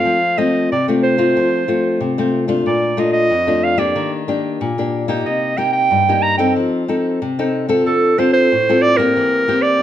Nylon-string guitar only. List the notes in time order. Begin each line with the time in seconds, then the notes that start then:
Already playing: A3 C4 F4
0.05 F3
0.38 A3 C4 F4
0.72 C3
0.88 A3 C4 F4
1.18 A3 C4 F4
1.37 F3
1.68 A3 C4 F4
2.01 C3
2.18 A3 C4 F4
2.48 A3 D4 F4
2.66 A#2
2.97 A3 D4 F4
3.31 F2
3.47 A3 D4 F4
3.78 A#3 D4 G4
3.96 D#3
4.28 A#3 D4 G4
4.61 A#2
4.78 A#3 D4 G4
5.08 A#3 D#4 G4
5.26 C3
5.57 A#3 D#4 G4
5.91 G2
6.09 A#3 D#4 G4
6.39 C4 D#4 A4
6.56 F3
6.88 C4 D#4 A4
7.22 C3
7.39 C4 D#4 A4
7.69 C4 F4 A4
7.87 D3
8.18 C4 F4 A4
8.52 A2
8.69 C4 F4 A4
8.98 A#3 C4 G4
9.17 E3
9.48 A#3 C4 G4